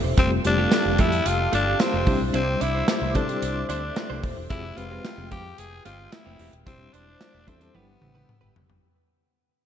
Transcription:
Already playing: G3 C4 D4 E4 G4 A4 C5 E5 D6
0.04 E1, muted clean electric guitar stroke
0.17 F1 G3 A3 C4 F4 G4 F5 A5, kick, closed hi-hat
0.31 muted clean electric guitar stroke
0.44 F1 G3 A3 C4 D4 F4 G4, muted clean electric guitar stroke, closed hi-hat
0.57 G3 A3 C4 F4 G4 A4
0.72 snare, closed hi-hat, tambourine
0.85 F1, muted clean electric guitar stroke
0.98 F2 A3 E4 F4 G4, kick, closed hi-hat
1.12 muted clean electric guitar stroke, closed hi-hat
1.26 F1 F4, muted clean electric guitar stroke, closed hi-hat
1.39 muted clean electric guitar stroke
1.52 G1 A3 D4 F4 G4, closed hi-hat
1.66 A3 F4 G4
1.80 C4, snare, closed hi-hat, tambourine
1.93 F1 A3 F4 G4
2.06 C2 G3 C4 D4 E4 G4 C5 E5 D6, kick, open hi-hat
2.20 B1, muted clean electric guitar stroke
2.34 C2 C4 D4 E4 C5, closed hi-hat
2.47 muted clean electric guitar stroke
2.61 C2 D4 E4 C5, closed hi-hat
2.75 D4 E4 C5
2.88 E4, snare, closed hi-hat, tambourine
3.02 C2, muted clean electric guitar stroke
3.14 C3 G3 C4 D4 E4 A4 C5, kick, closed hi-hat
3.28 G3 C4 D4 E4 G4, muted clean electric guitar stroke, closed hi-hat
3.42 C2, muted clean electric guitar stroke, closed hi-hat
3.56 muted clean electric guitar stroke
3.69 D2 D4 E4 C5, closed hi-hat
3.83 muted clean electric guitar stroke
3.96 muted clean electric guitar stroke, snare, closed hi-hat, tambourine
4.10 C2 D4 E4 C5
4.23 D#1, kick, open hi-hat
4.37 E1, muted clean electric guitar stroke
4.50 F1 G#3 C4 E4 F4 G4 G#4 G5, kick, closed hi-hat
4.64 muted clean electric guitar stroke
4.77 F1 G#3 C4 F4 G4 B4, muted clean electric guitar stroke, closed hi-hat
4.90 G#3 C4 F4 G4 B4
5.05 snare, closed hi-hat, tambourine
5.18 F1, muted clean electric guitar stroke
5.31 F2 G#3 C4 G4, kick, closed hi-hat
5.45 muted clean electric guitar stroke
5.58 F1 G#4, muted clean electric guitar stroke, closed hi-hat
5.72 muted clean electric guitar stroke
5.85 G1 G#3 C4 F4 G4, closed hi-hat
5.99 G#3 C4 G4
6.12 E4, snare, closed hi-hat, tambourine
6.26 F1 G#3 C4 G4
6.39 E1 G#3 C4 G4, open hi-hat
6.53 D#1, muted clean electric guitar stroke, closed hi-hat
6.66 E1 G3 C4 D4 E4 G4 C5 E5 D6, kick, closed hi-hat
6.93 E1 D4 E4 C5, closed hi-hat
7.07 D4 E4 C5
7.21 snare, closed hi-hat, tambourine
7.34 E1, muted clean electric guitar stroke
7.47 E2 G3 C4 D4 E4 A4 C5, kick, closed hi-hat
7.60 G3 C4 D4 E4 A4, muted clean electric guitar stroke, closed hi-hat
7.74 G1 G3 B3 D4 E4 G4 B4 G5 E6, high tom
8.01 A1, muted clean electric guitar stroke, mid tom
8.15 E4 G4 B4, mid tom
8.28 muted clean electric guitar stroke, mid tom
8.41 G1 E4 G4 B4
8.55 F1, muted clean electric guitar stroke, floor tom
8.68 F#1, muted clean electric guitar stroke, floor tom

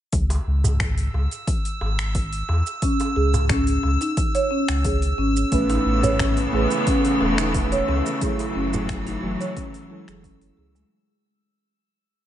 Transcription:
0.13 C#2 E6, kick, open hi-hat, shaker
0.30 open hi-hat, darbuka ka, darbuka tek, shaker
0.47 C#2
0.64 darbuka dum, shaker
0.80 finger snap, kick, open hi-hat, darbuka dum, shaker
0.98 open hi-hat, shaker
1.14 C#2, darbuka ka
1.31 open hi-hat, shaker
1.47 kick, open hi-hat, shaker
1.65 open hi-hat, shaker
1.81 G#1, darbuka tek
1.99 finger snap, shaker
2.15 kick, open hi-hat, shaker
2.33 open hi-hat, shaker
2.49 E2, darbuka tek
2.67 shaker
2.82 C#4, kick, open hi-hat, shaker
3.00 open hi-hat, darbuka ka, darbuka tek, shaker
3.16 C#2 G#4
3.34 darbuka tek, darbuka dum, shaker
3.49 C#4, finger snap, kick, open hi-hat, darbuka dum, shaker
3.67 open hi-hat, shaker
3.83 C#2, darbuka ka
4.01 D#4, open hi-hat, shaker
4.17 kick, open hi-hat, shaker
4.35 C#5, open hi-hat, shaker
4.51 C#4
4.68 C#2, finger snap, shaker
4.84 G#4, kick, open hi-hat, shaker
5.02 open hi-hat, shaker
5.18 G#1 C#4
5.36 shaker
5.51 A1 C#3 E3 A3 B3 C#4 B4, kick, open hi-hat, shaker
5.70 D#4, open hi-hat, darbuka ka, darbuka tek, shaker
5.86 A1
6.03 A3 C#4 B4 C#5, darbuka dum, shaker
6.19 C#4, finger snap, kick, open hi-hat, darbuka dum, shaker
6.37 open hi-hat, shaker
6.51 A1 A3 C#4 G#4, darbuka ka
6.56 B4
6.71 open hi-hat, shaker
6.87 C#4, kick, open hi-hat, shaker
7.05 open hi-hat, shaker
7.21 E1, darbuka tek
7.38 D#4, finger snap, shaker
7.54 kick, open hi-hat, shaker
7.72 C#5, open hi-hat, shaker
7.88 C#2 C#4, darbuka tek
8.06 shaker
8.20 E3 F#3 A3 E4 G#4, kick, open hi-hat, shaker
8.39 open hi-hat, darbuka ka, darbuka tek, shaker
8.55 F#1 C#4
8.72 F#3 A3 E4, darbuka tek, darbuka dum, shaker
8.89 finger snap, kick, open hi-hat, darbuka dum, shaker
9.07 D#4, open hi-hat, shaker
9.22 F#1 E3 F#3 A3, darbuka ka
9.40 C#5, open hi-hat, shaker
9.57 C#4, kick, open hi-hat, shaker
9.74 open hi-hat, shaker
9.89 F#3 G#3 E4 A4
10.06 F#1 E3 F#3 G#4, finger snap, shaker
10.23 C#4, kick, open hi-hat, shaker
10.41 open hi-hat, shaker
10.57 C#2 G#4
10.75 G#3, shaker

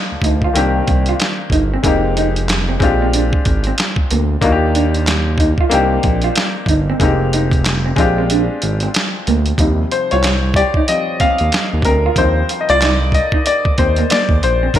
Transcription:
Already playing: F3 A#3 D4 D#4 G4
0.12 D2
0.22 D2 D#4, kick, closed hi-hat
0.42 F4, kick
0.53 C2 D#3 A#3 C4 D4 G4, closed hi-hat
0.58 G4
0.87 C2, muted clean electric guitar stroke, kick, closed hi-hat
1.06 F4, closed hi-hat
1.20 muted clean electric guitar stroke, snare, clap, closed hi-hat
1.50 G1 D#4, kick, closed hi-hat
1.74 C4
1.83 F1 G#3 A#3 C4 D#4, kick, closed hi-hat
1.88 G4
2.17 D#4, closed hi-hat
2.36 closed hi-hat
2.49 snare, clap, closed hi-hat
2.69 C4
2.79 A#1 G#3 C4 D4 F4, muted clean electric guitar stroke, kick, closed hi-hat
2.84 G4
3.02 C4
3.13 D4, closed hi-hat
3.33 kick
3.45 G#1, muted clean electric guitar stroke, kick, closed hi-hat
3.64 C4, closed hi-hat
3.78 snare, clap, closed hi-hat
3.96 kick
4.11 D2 A#3, closed hi-hat
4.41 D#2 A#3 D4 D#4 F4, kick, closed hi-hat
4.46 F#4
4.52 G4
4.75 D4, closed hi-hat
4.94 closed hi-hat
5.07 muted clean electric guitar stroke, snare, clap, closed hi-hat
5.38 D#4, kick, closed hi-hat
5.58 F4, kick
5.70 C2 A#3 C4 D4 D#4 G4, closed hi-hat
5.74 G4
6.03 A#1, muted clean electric guitar stroke, kick, closed hi-hat
6.22 F4, closed hi-hat
6.35 muted clean electric guitar stroke, snare, clap, closed hi-hat
6.66 G1 D#4, kick, closed hi-hat
6.90 C4
6.99 F1 G#3 A#3 C4 D#4, kick, closed hi-hat
7.04 G4
7.33 D#4, closed hi-hat
7.51 kick, closed hi-hat
7.65 snare, clap, closed hi-hat
7.86 C4
7.96 A#1 G#3 C4 D4 F4, muted clean electric guitar stroke, kick, closed hi-hat
8.01 G4
8.18 C4
8.30 D4, closed hi-hat
8.62 G#1, muted clean electric guitar stroke, closed hi-hat
8.80 C4, closed hi-hat
8.94 snare, clap, closed hi-hat
9.27 D2 A#3, closed hi-hat
9.46 closed hi-hat
9.58 D#2 C3 F3 G3 D#4, kick, closed hi-hat
9.92 C5, muted clean electric guitar stroke, closed hi-hat
10.11 C2 F4 C#5, closed hi-hat
10.23 muted clean electric guitar stroke, snare, clap, closed hi-hat
10.54 G4 D5, kick, closed hi-hat
10.74 D#4, kick
10.88 F3 G3 C4 D#5, closed hi-hat
11.20 D#2 C4 F5, kick, closed hi-hat
11.38 D#2, closed hi-hat
11.52 muted clean electric guitar stroke, snare, clap, closed hi-hat
11.73 D#2
11.82 D2 C4 A#4, kick, closed hi-hat
12.06 F4
12.16 D#2 F3 G3 C4 D#4 C5, kick, closed hi-hat
12.49 muted clean electric guitar stroke, closed hi-hat
12.61 D#5
12.69 C2 F4 D5, closed hi-hat
12.81 D#4, snare, clap, closed hi-hat
13.12 D#5, muted clean electric guitar stroke, kick, closed hi-hat
13.32 D#4, kick
13.46 D5, muted clean electric guitar stroke, closed hi-hat
13.65 D#2, kick
13.78 D#2 C4 C5, kick, closed hi-hat
13.96 A#3, closed hi-hat
14.10 A#3 D5, snare, clap, closed hi-hat
14.29 D#2, kick
14.43 A#1 C5, muted clean electric guitar stroke, closed hi-hat
14.63 C4
14.74 C2 D#3 A#3 C4 A#4, kick, closed hi-hat

